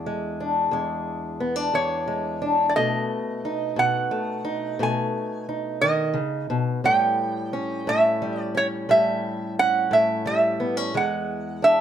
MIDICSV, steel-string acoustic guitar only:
0, 0, Header, 1, 2, 480
1, 0, Start_track
1, 0, Tempo, 681044
1, 1949, Time_signature, 12, 3, 24, 8
1, 8322, End_track
2, 0, Start_track
2, 0, Title_t, "Steel-string acoustic guitar"
2, 0, Program_c, 0, 25
2, 0, Note_on_c, 0, 40, 66
2, 0, Note_on_c, 0, 62, 57
2, 45, Note_on_c, 0, 56, 59
2, 275, Note_off_c, 0, 62, 0
2, 285, Note_on_c, 0, 62, 54
2, 494, Note_off_c, 0, 40, 0
2, 503, Note_on_c, 0, 40, 69
2, 506, Note_off_c, 0, 56, 0
2, 514, Note_on_c, 0, 56, 57
2, 986, Note_off_c, 0, 62, 0
2, 989, Note_on_c, 0, 59, 55
2, 1097, Note_off_c, 0, 59, 0
2, 1097, Note_on_c, 0, 62, 45
2, 1214, Note_off_c, 0, 40, 0
2, 1223, Note_on_c, 0, 40, 70
2, 1454, Note_off_c, 0, 56, 0
2, 1462, Note_on_c, 0, 56, 56
2, 1695, Note_off_c, 0, 62, 0
2, 1704, Note_on_c, 0, 62, 60
2, 1917, Note_off_c, 0, 56, 0
2, 1917, Note_off_c, 0, 62, 0
2, 1945, Note_off_c, 0, 40, 0
2, 1946, Note_on_c, 0, 47, 72
2, 1949, Note_on_c, 0, 57, 64
2, 2431, Note_on_c, 0, 63, 56
2, 2644, Note_off_c, 0, 47, 0
2, 2652, Note_on_c, 0, 47, 68
2, 2894, Note_off_c, 0, 57, 0
2, 2897, Note_on_c, 0, 57, 57
2, 3125, Note_off_c, 0, 63, 0
2, 3134, Note_on_c, 0, 63, 64
2, 3369, Note_off_c, 0, 47, 0
2, 3378, Note_on_c, 0, 47, 67
2, 3381, Note_off_c, 0, 57, 0
2, 3384, Note_on_c, 0, 57, 59
2, 3858, Note_off_c, 0, 63, 0
2, 3867, Note_on_c, 0, 63, 53
2, 4107, Note_on_c, 0, 51, 64
2, 4322, Note_off_c, 0, 47, 0
2, 4325, Note_on_c, 0, 49, 65
2, 4347, Note_off_c, 0, 51, 0
2, 4575, Note_off_c, 0, 49, 0
2, 4580, Note_on_c, 0, 47, 70
2, 4796, Note_off_c, 0, 57, 0
2, 4798, Note_off_c, 0, 63, 0
2, 4819, Note_off_c, 0, 47, 0
2, 4822, Note_on_c, 0, 45, 77
2, 4827, Note_on_c, 0, 55, 65
2, 5308, Note_on_c, 0, 61, 59
2, 5539, Note_off_c, 0, 45, 0
2, 5548, Note_on_c, 0, 45, 73
2, 5784, Note_off_c, 0, 55, 0
2, 5792, Note_on_c, 0, 55, 62
2, 6015, Note_off_c, 0, 61, 0
2, 6023, Note_on_c, 0, 61, 59
2, 6257, Note_off_c, 0, 55, 0
2, 6260, Note_off_c, 0, 45, 0
2, 6265, Note_on_c, 0, 55, 56
2, 6268, Note_on_c, 0, 45, 73
2, 6746, Note_off_c, 0, 61, 0
2, 6763, Note_on_c, 0, 61, 55
2, 6975, Note_off_c, 0, 45, 0
2, 6984, Note_on_c, 0, 45, 73
2, 7220, Note_off_c, 0, 55, 0
2, 7229, Note_on_c, 0, 55, 59
2, 7467, Note_off_c, 0, 61, 0
2, 7470, Note_on_c, 0, 59, 60
2, 7590, Note_off_c, 0, 59, 0
2, 7590, Note_on_c, 0, 61, 51
2, 7707, Note_off_c, 0, 45, 0
2, 7709, Note_off_c, 0, 55, 0
2, 7710, Note_off_c, 0, 61, 0
2, 7712, Note_on_c, 0, 40, 81
2, 7717, Note_on_c, 0, 56, 68
2, 8192, Note_on_c, 0, 62, 55
2, 8322, Note_off_c, 0, 40, 0
2, 8322, Note_off_c, 0, 56, 0
2, 8322, Note_off_c, 0, 62, 0
2, 8322, End_track
0, 0, End_of_file